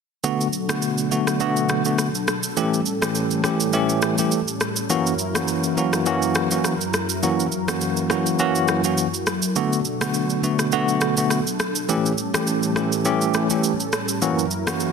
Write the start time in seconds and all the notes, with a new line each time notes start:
0.24 B2 D3 F#3 A3 B3 D4 F#4 A4, shaker
0.41 shaker
0.53 shaker
0.69 D3 A3 B3 F#4, cross-stick, shaker
0.82 shaker
0.98 shaker
1.11 D3 A3 B3 F#4, shaker
1.27 cross-stick, shaker
1.40 D3 A3 B3 F#4, shaker
1.56 shaker
1.69 cross-stick, shaker
1.85 D3 A3 B3 F#4, shaker
1.98 cross-stick, shaker
2.15 shaker
2.28 cross-stick, shaker
2.43 shaker
2.57 A2 E3 G3 A3 C#4 G4, shaker
2.74 shaker
2.86 shaker
3.02 E3 A3 C#4 G4, cross-stick, shaker
3.15 shaker
3.31 shaker
3.44 E3 A3 C#4 G4, cross-stick, shaker
3.60 shaker
3.73 E3 A3 C#4 G4, shaker
3.89 shaker
4.02 cross-stick, shaker
4.18 E3 A3 C#4 G4, shaker
4.32 shaker
4.48 shaker
4.61 cross-stick, shaker
4.76 shaker
4.90 F#2 E3 F#3 A#3 C#4 E4 F#4 A#4, shaker
5.07 shaker
5.19 shaker
5.35 E3 A#3 C#4 F#4, cross-stick, shaker
5.48 shaker
5.64 shaker
5.77 E3 A#3 C#4 F#4, shaker
5.93 cross-stick, shaker
6.06 E3 A#3 C#4 F#4, shaker
6.22 shaker
6.35 cross-stick, shaker
6.51 E3 A#3 C#4 F#4, shaker
6.64 cross-stick, shaker
6.81 shaker
6.94 cross-stick, shaker
7.09 shaker
7.23 E3 A#3 C#4 F#4, shaker
7.40 shaker
7.52 shaker
7.68 E3 A#3 C#4 F#4, cross-stick, shaker
7.81 shaker
7.97 shaker
8.10 E3 A#3 C#4 F#4, cross-stick, shaker
8.26 shaker
8.39 E3 A#3 C#4 F#4, shaker
8.55 shaker
8.68 cross-stick, shaker
8.84 E3 A#3 C#4 F#4, shaker
8.98 shaker
9.14 shaker
9.27 cross-stick, shaker
9.42 shaker
9.56 B2 D3 A3 B3 D4 F#4 A4, shaker
9.73 shaker
9.85 shaker
10.01 D3 A3 B3 F#4, cross-stick, shaker
10.14 shaker
10.30 shaker
10.43 D3 A3 B3 F#4, shaker
10.59 cross-stick, shaker
10.72 D3 A3 B3 F#4, shaker
10.88 shaker
11.01 cross-stick, shaker
11.17 D3 A3 B3 F#4, shaker
11.30 cross-stick, shaker
11.47 shaker
11.60 cross-stick, shaker
11.75 shaker
11.89 A2 E3 G3 A3 C#4 G4, shaker
12.06 shaker
12.18 shaker
12.34 E3 A3 C#4 G4, cross-stick, shaker
12.47 shaker
12.63 shaker
12.76 E3 A3 C#4 G4, cross-stick, shaker
12.92 shaker
13.05 E3 A3 C#4 G4, shaker
13.22 shaker
13.34 cross-stick, shaker
13.50 E3 A3 C#4 G4, shaker
13.64 shaker
13.80 shaker
13.93 cross-stick, shaker
14.09 shaker
14.22 F#2 E3 F#3 A#3 C#4 E4 F#4 A#4, shaker
14.39 shaker
14.51 shaker
14.67 E3 A#3 C#4 F#4, cross-stick, shaker
14.80 shaker